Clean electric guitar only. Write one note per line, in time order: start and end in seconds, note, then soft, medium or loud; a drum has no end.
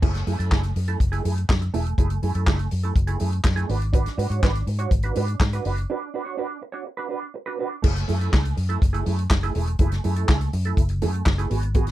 0.02 0.22 A3 medium
0.02 0.15 E4 medium
0.02 0.14 G#4 medium
0.15 muted clean electric guitar stroke soft
0.27 0.39 A3 medium
0.27 0.38 E4 medium
0.27 0.38 G#4 medium
0.39 0.50 A3 soft
0.39 0.51 E4 soft
0.39 0.53 A4 medium
0.51 0.71 A3 medium
0.51 0.64 E4 medium
0.51 0.63 G#4 medium
0.64 muted clean electric guitar stroke soft
0.76 muted clean electric guitar stroke soft
0.88 0.99 A3 medium
0.88 1.00 E4 medium
0.88 1.01 A4 medium
1.00 muted clean electric guitar stroke soft
1.12 1.23 A3 medium
1.12 1.24 E4 medium
1.12 1.25 G#4 medium
1.24 1.41 A3 medium
1.24 1.37 E4 medium
1.24 1.35 G#4 medium
1.36 muted clean electric guitar stroke soft
1.61 muted clean electric guitar stroke medium
1.74 1.93 A3 medium
1.74 1.87 E4 medium
1.74 1.86 G#4 medium
1.87 muted clean electric guitar stroke medium
1.98 2.18 A3 medium
1.98 2.10 E4 medium
1.98 2.10 G#4 loud
2.11 muted clean electric guitar stroke soft
2.22 2.36 A3 medium
2.22 2.35 E4 medium
2.22 2.35 G#4 medium
2.35 2.46 A3 soft
2.35 2.47 E4 medium
2.35 2.48 A4 medium
2.47 2.67 A3 medium
2.47 2.60 E4 medium
2.47 2.59 G#4 medium
2.60 muted clean electric guitar stroke soft
2.71 muted clean electric guitar stroke soft
2.83 2.94 A3 soft
2.83 2.95 E4 medium
2.83 2.96 A4 medium
2.95 muted clean electric guitar stroke soft
3.07 3.18 A3 medium
3.07 3.19 E4 medium
3.07 3.20 G#4 medium
3.19 3.36 A3 medium
3.19 3.32 E4 medium
3.19 3.31 G#4 medium
3.33 muted clean electric guitar stroke soft
3.44 muted clean electric guitar stroke soft
3.56 3.77 A3 medium
3.56 3.68 E4 medium
3.56 3.70 G#4 medium
3.69 3.85 D4 medium
3.69 3.81 F#4 medium
3.69 3.80 B4 medium
3.81 muted clean electric guitar stroke medium
3.93 4.13 D4 medium
3.93 4.06 F#4 medium
3.93 4.05 B4 medium
4.06 muted clean electric guitar stroke medium
4.17 4.30 D4 medium
4.17 4.29 F#4 medium
4.17 4.29 B4 medium
4.29 4.41 D4 soft
4.29 4.42 F#4 medium
4.29 4.44 C#5 medium
4.42 4.62 D4 medium
4.42 4.54 F#4 medium
4.42 4.54 B4 medium
4.55 muted clean electric guitar stroke soft
4.68 muted clean electric guitar stroke soft
4.79 4.90 D4 medium
4.79 4.91 F#4 medium
4.79 4.92 C#5 medium
4.91 muted clean electric guitar stroke soft
5.04 5.14 D4 medium
5.04 5.16 F#4 medium
5.04 5.16 B4 medium
5.15 5.35 D4 medium
5.15 5.29 F#4 medium
5.15 5.27 B4 medium
5.28 muted clean electric guitar stroke soft
5.41 muted clean electric guitar stroke soft
5.53 5.64 D4 medium
5.53 5.65 F#4 medium
5.53 5.66 B4 medium
5.65 5.81 D4 medium
5.65 5.78 F#4 medium
5.65 5.77 B4 medium
5.78 muted clean electric guitar stroke soft
5.90 6.09 D4 medium
5.90 6.03 F#4 medium
5.90 6.01 B4 medium
6.02 muted clean electric guitar stroke soft
6.14 6.25 D4 medium
6.14 6.25 F#4 medium
6.14 6.24 B4 medium
6.25 6.36 D4 medium
6.25 6.37 F#4 medium
6.25 6.39 C#5 medium
6.37 6.57 D4 medium
6.37 6.49 F#4 medium
6.37 6.48 B4 medium
6.49 muted clean electric guitar stroke medium
6.62 muted clean electric guitar stroke medium
6.72 6.85 D4 medium
6.72 6.86 F#4 medium
6.72 6.87 C#5 medium
6.86 muted clean electric guitar stroke soft
6.97 7.08 D4 medium
6.97 7.09 F#4 medium
6.97 7.10 B4 medium
7.09 7.26 D4 medium
7.09 7.22 F#4 medium
7.09 7.20 B4 medium
7.22 muted clean electric guitar stroke soft
7.34 muted clean electric guitar stroke soft
7.46 7.58 D4 medium
7.46 7.59 F#4 medium
7.46 7.59 B4 medium
7.59 7.76 D4 medium
7.59 7.71 F#4 medium
7.59 7.70 B4 medium
7.71 muted clean electric guitar stroke soft
7.82 8.03 A3 medium
7.82 7.95 E4 medium
7.82 7.94 G#4 medium
7.95 muted clean electric guitar stroke soft
8.08 8.20 A3 medium
8.08 8.20 E4 medium
8.08 8.19 G#4 medium
8.20 8.31 A3 medium
8.20 8.32 E4 medium
8.20 8.33 A4 medium
8.32 8.52 A3 medium
8.32 8.44 E4 medium
8.32 8.43 G#4 medium
8.44 muted clean electric guitar stroke soft
8.56 muted clean electric guitar stroke soft
8.69 8.81 A3 medium
8.69 8.81 E4 medium
8.69 8.82 A4 medium
8.82 muted clean electric guitar stroke soft
8.93 9.04 A3 medium
8.93 9.05 E4 medium
8.93 9.06 G#4 medium
9.05 9.22 A3 medium
9.05 9.19 E4 medium
9.05 9.17 G#4 medium
9.18 muted clean electric guitar stroke soft
9.31 muted clean electric guitar stroke soft
9.43 9.54 A3 medium
9.43 9.55 E4 medium
9.43 9.55 G#4 medium
9.55 9.72 A3 medium
9.55 9.68 E4 medium
9.55 9.67 G#4 medium
9.68 muted clean electric guitar stroke medium
9.80 9.99 A3 medium
9.80 9.92 E4 medium
9.80 9.91 G#4 medium
9.92 muted clean electric guitar stroke medium
10.04 10.17 A3 medium
10.04 10.16 E4 medium
10.04 10.16 G#4 medium
10.16 10.27 A3 medium
10.16 10.28 E4 medium
10.16 10.30 A4 medium
10.29 10.48 A3 medium
10.29 10.41 E4 medium
10.29 10.39 G#4 loud
10.41 muted clean electric guitar stroke soft
10.53 muted clean electric guitar stroke medium
10.65 10.82 A3 medium
10.65 10.82 E4 medium
10.65 10.82 A4 medium
10.90 muted clean electric guitar stroke soft
11.02 11.22 A3 medium
11.02 11.14 E4 medium
11.02 11.13 G#4 loud
11.14 muted clean electric guitar stroke medium
11.27 muted clean electric guitar stroke soft
11.38 11.50 A3 medium
11.38 11.51 E4 medium
11.38 11.51 G#4 medium
11.50 11.67 B3 medium
11.50 11.63 F#4 medium
11.50 11.62 G#4 medium
11.63 muted clean electric guitar stroke medium
11.75 11.91 B3 medium
11.75 11.88 F#4 medium
11.75 11.87 G#4 loud
11.88 muted clean electric guitar stroke soft